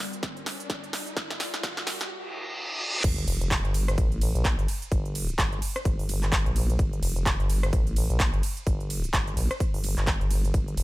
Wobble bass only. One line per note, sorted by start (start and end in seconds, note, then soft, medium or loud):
3.04 3.26 G1 medium
3.28 3.63 F1 loud
3.65 3.96 G1 medium
3.98 4.33 A1 loud
4.35 4.56 A#1 loud
4.59 4.67 G1 loud
4.92 5.37 G1 loud
5.38 5.60 G1 medium
5.85 5.97 G1 medium
5.99 6.44 G1 loud
6.46 6.78 A#1 loud
6.79 7.01 G1 medium
7.02 7.38 F1 loud
7.40 7.71 G1 loud
7.73 8.08 A1 loud
8.10 8.31 A#1 loud
8.34 8.42 G1 loud
8.67 9.12 G1 loud
9.14 9.35 G1 loud
9.37 9.49 A#1 medium
9.74 9.95 G1 loud
9.98 10.19 G1 loud
10.21 10.53 G1 loud
10.54 10.76 G1 loud
10.77 10.83 F1 loud